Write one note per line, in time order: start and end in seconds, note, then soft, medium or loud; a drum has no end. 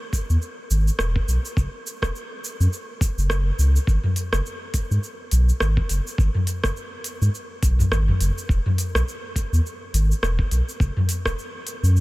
0.13 kick medium
0.13 shaker medium
0.29 0.37 E2 medium
0.29 shaker soft
0.42 shaker soft
0.70 0.90 G#1 loud
0.70 shaker medium
0.88 shaker soft
0.99 1.19 E1 loud
0.99 cross-stick medium
0.99 shaker soft
1.16 kick loud
1.28 1.38 B1 medium
1.28 shaker medium
1.45 shaker soft
1.57 1.67 F#1 medium
1.57 kick loud
1.57 shaker soft
1.87 shaker medium
2.02 2.10 E1 medium
2.02 kick medium
2.02 cross-stick medium
2.02 shaker soft
2.16 shaker soft
2.44 shaker medium
2.60 2.68 F#2 medium
2.60 shaker soft
2.73 shaker soft
3.01 kick loud
3.01 shaker medium
3.17 3.51 F#1 medium
3.17 shaker soft
3.30 cross-stick medium
3.30 shaker soft
3.58 3.78 C#2 medium
3.58 shaker medium
3.76 shaker soft
3.87 3.98 G#1 medium
3.87 kick loud
3.87 shaker soft
4.04 mid tom medium
4.16 open hi-hat medium
4.16 shaker medium
4.33 4.41 F#1 medium
4.33 cross-stick medium
4.33 shaker soft
4.46 shaker soft
4.74 kick medium
4.74 open hi-hat medium
4.74 shaker medium
4.91 4.98 G#2 medium
4.91 shaker soft
5.04 shaker soft
5.31 5.52 B1 medium
5.31 open hi-hat medium
5.31 shaker medium
5.49 shaker soft
5.60 5.80 G#1 loud
5.60 cross-stick medium
5.60 shaker soft
5.77 kick medium
5.89 6.00 F#1 medium
5.89 open hi-hat medium
5.89 shaker medium
6.07 shaker soft
6.18 6.29 G#1 loud
6.18 kick loud
6.18 shaker soft
6.35 mid tom medium
6.47 open hi-hat medium
6.47 shaker medium
6.64 6.71 F#1 medium
6.64 kick medium
6.64 cross-stick medium
6.64 shaker soft
6.77 shaker soft
7.04 open hi-hat medium
7.04 shaker medium
7.21 7.29 G#2 medium
7.21 shaker soft
7.35 shaker soft
7.63 7.82 B1 loud
7.63 kick medium
7.63 open hi-hat medium
7.63 shaker medium
7.79 mid tom medium
7.79 shaker soft
7.92 8.11 G#1 loud
7.92 cross-stick medium
7.92 shaker soft
8.08 mid tom medium
8.20 8.31 F#1 loud
8.20 open hi-hat medium
8.20 shaker medium
8.38 shaker soft
8.49 8.60 E1 loud
8.49 kick loud
8.49 shaker soft
8.66 mid tom medium
8.78 open hi-hat medium
8.78 shaker medium
8.94 9.02 B1 medium
8.94 cross-stick medium
8.94 shaker soft
9.08 shaker soft
9.36 kick medium
9.36 open hi-hat medium
9.36 shaker medium
9.52 9.60 E2 medium
9.52 shaker soft
9.66 shaker soft
9.94 10.13 G#1 loud
9.94 open hi-hat medium
9.94 shaker medium
10.12 shaker soft
10.22 10.42 E1 loud
10.22 cross-stick medium
10.22 shaker soft
10.39 kick medium
10.51 10.61 B1 medium
10.51 open hi-hat medium
10.51 shaker medium
10.69 shaker soft
10.80 10.90 F#1 loud
10.80 kick loud
10.80 shaker soft
10.97 mid tom medium
11.09 open hi-hat medium
11.09 shaker medium
11.25 11.33 E1 medium
11.25 kick medium
11.25 cross-stick medium
11.25 shaker soft
11.39 shaker soft
11.67 open hi-hat medium
11.67 shaker medium
11.83 12.00 F#2 medium
11.83 shaker soft
11.96 shaker soft